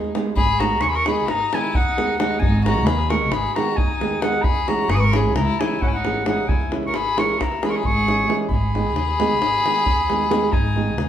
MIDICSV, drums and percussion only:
0, 0, Header, 1, 2, 480
1, 0, Start_track
1, 0, Key_signature, 5, "minor"
1, 0, Tempo, 452148
1, 374, Time_signature, 9, 3, 24, 8
1, 11772, End_track
2, 0, Start_track
2, 0, Title_t, "Davul"
2, 46, Note_on_c, 9, 37, 32
2, 152, Note_off_c, 9, 37, 0
2, 159, Note_on_c, 9, 37, 76
2, 266, Note_off_c, 9, 37, 0
2, 394, Note_on_c, 9, 43, 100
2, 500, Note_off_c, 9, 43, 0
2, 642, Note_on_c, 9, 37, 83
2, 748, Note_off_c, 9, 37, 0
2, 753, Note_on_c, 9, 37, 31
2, 857, Note_off_c, 9, 37, 0
2, 857, Note_on_c, 9, 37, 76
2, 963, Note_off_c, 9, 37, 0
2, 989, Note_on_c, 9, 37, 36
2, 1096, Note_off_c, 9, 37, 0
2, 1124, Note_on_c, 9, 37, 80
2, 1230, Note_off_c, 9, 37, 0
2, 1362, Note_on_c, 9, 37, 78
2, 1469, Note_off_c, 9, 37, 0
2, 1621, Note_on_c, 9, 37, 79
2, 1727, Note_off_c, 9, 37, 0
2, 1740, Note_on_c, 9, 37, 27
2, 1846, Note_off_c, 9, 37, 0
2, 1856, Note_on_c, 9, 43, 115
2, 1962, Note_off_c, 9, 43, 0
2, 2104, Note_on_c, 9, 37, 76
2, 2210, Note_off_c, 9, 37, 0
2, 2334, Note_on_c, 9, 37, 97
2, 2440, Note_off_c, 9, 37, 0
2, 2450, Note_on_c, 9, 37, 26
2, 2556, Note_off_c, 9, 37, 0
2, 2572, Note_on_c, 9, 43, 113
2, 2678, Note_off_c, 9, 43, 0
2, 2826, Note_on_c, 9, 37, 81
2, 2932, Note_off_c, 9, 37, 0
2, 2932, Note_on_c, 9, 37, 29
2, 3038, Note_off_c, 9, 37, 0
2, 3044, Note_on_c, 9, 37, 91
2, 3150, Note_off_c, 9, 37, 0
2, 3174, Note_on_c, 9, 37, 36
2, 3281, Note_off_c, 9, 37, 0
2, 3295, Note_on_c, 9, 37, 85
2, 3401, Note_off_c, 9, 37, 0
2, 3521, Note_on_c, 9, 37, 82
2, 3627, Note_off_c, 9, 37, 0
2, 3782, Note_on_c, 9, 37, 78
2, 3889, Note_off_c, 9, 37, 0
2, 3904, Note_on_c, 9, 37, 30
2, 4010, Note_off_c, 9, 37, 0
2, 4013, Note_on_c, 9, 43, 116
2, 4119, Note_off_c, 9, 43, 0
2, 4261, Note_on_c, 9, 37, 66
2, 4367, Note_off_c, 9, 37, 0
2, 4483, Note_on_c, 9, 37, 88
2, 4589, Note_off_c, 9, 37, 0
2, 4591, Note_on_c, 9, 37, 29
2, 4698, Note_off_c, 9, 37, 0
2, 4714, Note_on_c, 9, 43, 127
2, 4820, Note_off_c, 9, 43, 0
2, 4968, Note_on_c, 9, 37, 65
2, 5074, Note_off_c, 9, 37, 0
2, 5082, Note_on_c, 9, 37, 30
2, 5188, Note_off_c, 9, 37, 0
2, 5197, Note_on_c, 9, 37, 85
2, 5304, Note_off_c, 9, 37, 0
2, 5328, Note_on_c, 9, 37, 42
2, 5434, Note_off_c, 9, 37, 0
2, 5451, Note_on_c, 9, 37, 89
2, 5557, Note_off_c, 9, 37, 0
2, 5687, Note_on_c, 9, 37, 90
2, 5793, Note_off_c, 9, 37, 0
2, 5952, Note_on_c, 9, 37, 89
2, 6058, Note_off_c, 9, 37, 0
2, 6070, Note_on_c, 9, 37, 26
2, 6176, Note_off_c, 9, 37, 0
2, 6179, Note_on_c, 9, 43, 94
2, 6285, Note_off_c, 9, 43, 0
2, 6419, Note_on_c, 9, 37, 69
2, 6525, Note_off_c, 9, 37, 0
2, 6647, Note_on_c, 9, 37, 90
2, 6753, Note_off_c, 9, 37, 0
2, 6771, Note_on_c, 9, 37, 23
2, 6877, Note_off_c, 9, 37, 0
2, 6890, Note_on_c, 9, 43, 111
2, 6996, Note_off_c, 9, 43, 0
2, 7021, Note_on_c, 9, 37, 32
2, 7127, Note_off_c, 9, 37, 0
2, 7133, Note_on_c, 9, 37, 62
2, 7239, Note_off_c, 9, 37, 0
2, 7251, Note_on_c, 9, 37, 28
2, 7357, Note_off_c, 9, 37, 0
2, 7366, Note_on_c, 9, 37, 75
2, 7472, Note_off_c, 9, 37, 0
2, 7498, Note_on_c, 9, 37, 31
2, 7604, Note_off_c, 9, 37, 0
2, 7621, Note_on_c, 9, 37, 81
2, 7727, Note_off_c, 9, 37, 0
2, 7751, Note_on_c, 9, 37, 31
2, 7857, Note_off_c, 9, 37, 0
2, 7863, Note_on_c, 9, 37, 78
2, 7863, Note_on_c, 9, 43, 73
2, 7970, Note_off_c, 9, 37, 0
2, 7970, Note_off_c, 9, 43, 0
2, 7984, Note_on_c, 9, 37, 32
2, 8090, Note_off_c, 9, 37, 0
2, 8099, Note_on_c, 9, 37, 80
2, 8205, Note_off_c, 9, 37, 0
2, 8333, Note_on_c, 9, 43, 86
2, 8440, Note_off_c, 9, 43, 0
2, 8459, Note_on_c, 9, 37, 32
2, 8566, Note_off_c, 9, 37, 0
2, 8581, Note_on_c, 9, 37, 66
2, 8687, Note_off_c, 9, 37, 0
2, 8698, Note_on_c, 9, 37, 29
2, 8804, Note_off_c, 9, 37, 0
2, 8811, Note_on_c, 9, 37, 73
2, 8917, Note_off_c, 9, 37, 0
2, 9033, Note_on_c, 9, 43, 92
2, 9140, Note_off_c, 9, 43, 0
2, 9290, Note_on_c, 9, 37, 54
2, 9396, Note_off_c, 9, 37, 0
2, 9412, Note_on_c, 9, 37, 28
2, 9513, Note_off_c, 9, 37, 0
2, 9513, Note_on_c, 9, 37, 70
2, 9619, Note_off_c, 9, 37, 0
2, 9644, Note_on_c, 9, 37, 31
2, 9750, Note_off_c, 9, 37, 0
2, 9765, Note_on_c, 9, 37, 68
2, 9871, Note_off_c, 9, 37, 0
2, 9999, Note_on_c, 9, 37, 84
2, 10105, Note_off_c, 9, 37, 0
2, 10251, Note_on_c, 9, 37, 68
2, 10357, Note_off_c, 9, 37, 0
2, 10365, Note_on_c, 9, 37, 30
2, 10470, Note_on_c, 9, 43, 100
2, 10471, Note_off_c, 9, 37, 0
2, 10577, Note_off_c, 9, 43, 0
2, 10718, Note_on_c, 9, 37, 61
2, 10825, Note_off_c, 9, 37, 0
2, 10950, Note_on_c, 9, 37, 89
2, 11056, Note_off_c, 9, 37, 0
2, 11067, Note_on_c, 9, 37, 28
2, 11173, Note_off_c, 9, 37, 0
2, 11176, Note_on_c, 9, 43, 108
2, 11282, Note_off_c, 9, 43, 0
2, 11551, Note_on_c, 9, 37, 29
2, 11657, Note_off_c, 9, 37, 0
2, 11659, Note_on_c, 9, 37, 73
2, 11765, Note_off_c, 9, 37, 0
2, 11772, End_track
0, 0, End_of_file